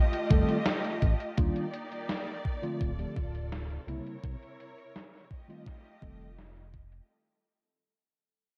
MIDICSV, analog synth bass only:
0, 0, Header, 1, 2, 480
1, 0, Start_track
1, 0, Tempo, 714286
1, 927, Time_signature, 4, 2, 24, 8
1, 5760, End_track
2, 0, Start_track
2, 0, Title_t, "Analog synth bass"
2, 0, Program_c, 0, 38
2, 206, Note_on_c, 0, 29, 85
2, 289, Note_off_c, 0, 29, 0
2, 686, Note_on_c, 0, 33, 86
2, 769, Note_off_c, 0, 33, 0
2, 926, Note_on_c, 0, 27, 90
2, 1009, Note_off_c, 0, 27, 0
2, 1887, Note_on_c, 0, 26, 80
2, 2051, Note_off_c, 0, 26, 0
2, 2126, Note_on_c, 0, 26, 77
2, 2546, Note_off_c, 0, 26, 0
2, 2605, Note_on_c, 0, 36, 92
2, 2688, Note_off_c, 0, 36, 0
2, 2847, Note_on_c, 0, 36, 92
2, 2930, Note_off_c, 0, 36, 0
2, 4047, Note_on_c, 0, 29, 89
2, 4706, Note_off_c, 0, 29, 0
2, 5760, End_track
0, 0, End_of_file